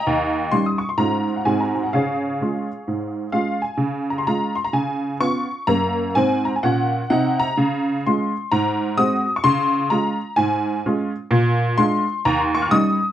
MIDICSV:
0, 0, Header, 1, 2, 480
1, 0, Start_track
1, 0, Key_signature, -5, "major"
1, 0, Tempo, 468750
1, 47, Time_signature, 4, 2, 24, 8
1, 13436, End_track
2, 0, Start_track
2, 0, Title_t, "Honky-tonk piano"
2, 0, Program_c, 0, 3
2, 0, Note_on_c, 0, 75, 72
2, 0, Note_on_c, 0, 79, 67
2, 0, Note_on_c, 0, 82, 86
2, 69, Note_on_c, 0, 39, 89
2, 253, Control_c, 0, 64, 127
2, 468, Note_off_c, 0, 39, 0
2, 505, Note_off_c, 0, 75, 0
2, 505, Note_off_c, 0, 79, 0
2, 527, Note_on_c, 0, 84, 87
2, 535, Note_on_c, 0, 61, 46
2, 536, Note_on_c, 0, 55, 50
2, 539, Note_off_c, 0, 82, 0
2, 540, Control_c, 0, 64, 0
2, 541, Note_on_c, 0, 63, 43
2, 678, Note_on_c, 0, 87, 63
2, 680, Note_off_c, 0, 84, 0
2, 797, Note_off_c, 0, 55, 0
2, 797, Note_off_c, 0, 61, 0
2, 802, Note_off_c, 0, 63, 0
2, 802, Note_on_c, 0, 85, 63
2, 831, Note_off_c, 0, 87, 0
2, 905, Note_off_c, 0, 85, 0
2, 912, Note_on_c, 0, 84, 54
2, 999, Note_on_c, 0, 44, 70
2, 1000, Note_on_c, 0, 56, 43
2, 1001, Note_on_c, 0, 82, 81
2, 1003, Note_off_c, 0, 84, 0
2, 1009, Note_on_c, 0, 61, 43
2, 1010, Note_on_c, 0, 65, 48
2, 1226, Control_c, 0, 64, 127
2, 1266, Note_off_c, 0, 56, 0
2, 1273, Note_off_c, 0, 61, 0
2, 1273, Note_off_c, 0, 65, 0
2, 1394, Note_on_c, 0, 78, 43
2, 1396, Note_off_c, 0, 82, 0
2, 1410, Note_off_c, 0, 44, 0
2, 1485, Note_off_c, 0, 78, 0
2, 1488, Note_on_c, 0, 80, 70
2, 1489, Note_on_c, 0, 44, 72
2, 1493, Note_on_c, 0, 56, 38
2, 1496, Note_on_c, 0, 60, 47
2, 1499, Note_on_c, 0, 66, 42
2, 1503, Control_c, 0, 64, 0
2, 1640, Note_off_c, 0, 80, 0
2, 1642, Note_on_c, 0, 82, 52
2, 1658, Control_c, 0, 64, 127
2, 1755, Note_off_c, 0, 56, 0
2, 1758, Note_off_c, 0, 60, 0
2, 1760, Note_off_c, 0, 66, 0
2, 1791, Note_on_c, 0, 80, 48
2, 1793, Note_off_c, 0, 82, 0
2, 1877, Note_on_c, 0, 78, 48
2, 1879, Note_off_c, 0, 80, 0
2, 1896, Note_off_c, 0, 44, 0
2, 1966, Note_off_c, 0, 78, 0
2, 1978, Note_on_c, 0, 77, 70
2, 1982, Control_c, 0, 64, 0
2, 1986, Note_on_c, 0, 49, 78
2, 1995, Note_on_c, 0, 73, 50
2, 2001, Note_on_c, 0, 68, 54
2, 2156, Control_c, 0, 64, 127
2, 2386, Note_off_c, 0, 49, 0
2, 2462, Control_c, 0, 64, 0
2, 2469, Note_on_c, 0, 56, 38
2, 2478, Note_on_c, 0, 61, 41
2, 2480, Note_on_c, 0, 65, 43
2, 2727, Note_off_c, 0, 56, 0
2, 2734, Note_off_c, 0, 61, 0
2, 2735, Note_off_c, 0, 65, 0
2, 2945, Note_on_c, 0, 44, 54
2, 3346, Note_off_c, 0, 44, 0
2, 3389, Note_off_c, 0, 77, 0
2, 3404, Note_on_c, 0, 77, 73
2, 3406, Note_on_c, 0, 56, 36
2, 3409, Note_on_c, 0, 61, 39
2, 3419, Note_on_c, 0, 65, 49
2, 3671, Note_off_c, 0, 56, 0
2, 3673, Note_off_c, 0, 61, 0
2, 3680, Note_off_c, 0, 65, 0
2, 3686, Note_off_c, 0, 73, 0
2, 3689, Note_off_c, 0, 68, 0
2, 3704, Note_on_c, 0, 80, 58
2, 3711, Note_off_c, 0, 77, 0
2, 3865, Note_on_c, 0, 49, 81
2, 4094, Control_c, 0, 64, 127
2, 4189, Note_off_c, 0, 80, 0
2, 4201, Note_on_c, 0, 82, 55
2, 4282, Note_on_c, 0, 84, 66
2, 4284, Note_off_c, 0, 49, 0
2, 4285, Note_off_c, 0, 82, 0
2, 4369, Note_off_c, 0, 84, 0
2, 4372, Note_on_c, 0, 56, 46
2, 4374, Note_on_c, 0, 82, 79
2, 4375, Note_on_c, 0, 61, 42
2, 4375, Note_on_c, 0, 65, 51
2, 4380, Control_c, 0, 64, 0
2, 4635, Note_off_c, 0, 56, 0
2, 4638, Note_off_c, 0, 61, 0
2, 4638, Note_off_c, 0, 65, 0
2, 4664, Note_on_c, 0, 84, 66
2, 4676, Note_off_c, 0, 82, 0
2, 4756, Note_on_c, 0, 82, 64
2, 4757, Note_off_c, 0, 84, 0
2, 4844, Note_on_c, 0, 49, 77
2, 4847, Note_off_c, 0, 82, 0
2, 4847, Note_on_c, 0, 80, 77
2, 5022, Control_c, 0, 64, 127
2, 5255, Note_off_c, 0, 49, 0
2, 5327, Note_on_c, 0, 59, 50
2, 5329, Note_off_c, 0, 80, 0
2, 5330, Note_on_c, 0, 85, 83
2, 5331, Note_on_c, 0, 61, 40
2, 5337, Note_on_c, 0, 65, 48
2, 5343, Control_c, 0, 64, 0
2, 5592, Note_off_c, 0, 59, 0
2, 5595, Note_off_c, 0, 61, 0
2, 5599, Note_off_c, 0, 65, 0
2, 5808, Note_on_c, 0, 82, 91
2, 5810, Note_off_c, 0, 85, 0
2, 5810, Note_on_c, 0, 42, 74
2, 5826, Note_on_c, 0, 58, 67
2, 6035, Control_c, 0, 64, 127
2, 6195, Note_off_c, 0, 42, 0
2, 6204, Note_off_c, 0, 58, 0
2, 6289, Note_off_c, 0, 82, 0
2, 6299, Note_on_c, 0, 80, 90
2, 6303, Control_c, 0, 64, 0
2, 6306, Note_on_c, 0, 44, 66
2, 6318, Note_on_c, 0, 60, 77
2, 6599, Note_off_c, 0, 80, 0
2, 6605, Note_on_c, 0, 82, 60
2, 6684, Note_off_c, 0, 44, 0
2, 6688, Note_off_c, 0, 82, 0
2, 6691, Note_off_c, 0, 60, 0
2, 6716, Note_on_c, 0, 80, 62
2, 6787, Note_off_c, 0, 80, 0
2, 6790, Note_on_c, 0, 78, 82
2, 6791, Note_on_c, 0, 46, 70
2, 6806, Note_on_c, 0, 61, 69
2, 7167, Note_off_c, 0, 46, 0
2, 7176, Note_off_c, 0, 61, 0
2, 7256, Note_off_c, 0, 78, 0
2, 7271, Note_on_c, 0, 78, 87
2, 7274, Note_on_c, 0, 48, 73
2, 7287, Note_on_c, 0, 63, 76
2, 7566, Note_off_c, 0, 78, 0
2, 7573, Note_on_c, 0, 82, 88
2, 7649, Note_off_c, 0, 48, 0
2, 7657, Note_off_c, 0, 63, 0
2, 7756, Note_on_c, 0, 49, 88
2, 7908, Control_c, 0, 64, 127
2, 8154, Note_off_c, 0, 49, 0
2, 8220, Note_off_c, 0, 82, 0
2, 8222, Control_c, 0, 64, 0
2, 8259, Note_on_c, 0, 84, 72
2, 8260, Note_on_c, 0, 56, 47
2, 8262, Note_on_c, 0, 61, 47
2, 8264, Note_on_c, 0, 65, 50
2, 8511, Note_off_c, 0, 56, 0
2, 8512, Note_off_c, 0, 61, 0
2, 8513, Note_off_c, 0, 65, 0
2, 8715, Note_off_c, 0, 84, 0
2, 8720, Note_on_c, 0, 82, 90
2, 8723, Note_on_c, 0, 44, 83
2, 8913, Control_c, 0, 64, 127
2, 9118, Note_off_c, 0, 44, 0
2, 9186, Note_off_c, 0, 82, 0
2, 9186, Control_c, 0, 64, 0
2, 9191, Note_on_c, 0, 56, 50
2, 9191, Note_on_c, 0, 87, 99
2, 9202, Note_on_c, 0, 60, 58
2, 9207, Note_on_c, 0, 66, 54
2, 9449, Note_off_c, 0, 56, 0
2, 9457, Note_off_c, 0, 60, 0
2, 9461, Note_off_c, 0, 66, 0
2, 9573, Note_off_c, 0, 87, 0
2, 9587, Note_on_c, 0, 85, 71
2, 9663, Note_off_c, 0, 85, 0
2, 9664, Note_on_c, 0, 84, 113
2, 9666, Note_on_c, 0, 49, 100
2, 9821, Control_c, 0, 64, 127
2, 10068, Note_off_c, 0, 49, 0
2, 10138, Note_off_c, 0, 84, 0
2, 10139, Note_on_c, 0, 82, 82
2, 10146, Note_on_c, 0, 56, 53
2, 10147, Control_c, 0, 64, 0
2, 10152, Note_on_c, 0, 61, 46
2, 10155, Note_on_c, 0, 65, 53
2, 10406, Note_off_c, 0, 56, 0
2, 10410, Note_off_c, 0, 61, 0
2, 10412, Note_off_c, 0, 65, 0
2, 10612, Note_on_c, 0, 80, 95
2, 10616, Note_off_c, 0, 82, 0
2, 10620, Note_on_c, 0, 44, 76
2, 11025, Note_off_c, 0, 44, 0
2, 11092, Note_off_c, 0, 80, 0
2, 11119, Note_on_c, 0, 65, 59
2, 11121, Note_on_c, 0, 61, 55
2, 11122, Note_on_c, 0, 56, 54
2, 11376, Note_off_c, 0, 65, 0
2, 11377, Note_off_c, 0, 56, 0
2, 11377, Note_off_c, 0, 61, 0
2, 11577, Note_on_c, 0, 46, 101
2, 11741, Control_c, 0, 64, 127
2, 11983, Note_off_c, 0, 46, 0
2, 12059, Note_on_c, 0, 84, 98
2, 12061, Note_on_c, 0, 56, 53
2, 12066, Control_c, 0, 64, 0
2, 12067, Note_on_c, 0, 62, 60
2, 12077, Note_on_c, 0, 65, 61
2, 12323, Note_off_c, 0, 56, 0
2, 12327, Note_off_c, 0, 62, 0
2, 12334, Note_off_c, 0, 65, 0
2, 12535, Note_off_c, 0, 84, 0
2, 12547, Note_on_c, 0, 82, 92
2, 12548, Note_on_c, 0, 39, 97
2, 12691, Note_off_c, 0, 82, 0
2, 12699, Note_on_c, 0, 84, 55
2, 12754, Control_c, 0, 64, 127
2, 12844, Note_off_c, 0, 84, 0
2, 12847, Note_on_c, 0, 85, 80
2, 12922, Note_on_c, 0, 89, 61
2, 12929, Note_off_c, 0, 85, 0
2, 12949, Note_off_c, 0, 39, 0
2, 13010, Note_off_c, 0, 89, 0
2, 13017, Note_on_c, 0, 87, 107
2, 13020, Control_c, 0, 64, 0
2, 13020, Note_on_c, 0, 55, 56
2, 13021, Note_on_c, 0, 61, 51
2, 13023, Note_on_c, 0, 63, 69
2, 13282, Note_off_c, 0, 55, 0
2, 13282, Note_off_c, 0, 61, 0
2, 13284, Note_off_c, 0, 63, 0
2, 13436, Note_off_c, 0, 87, 0
2, 13436, End_track
0, 0, End_of_file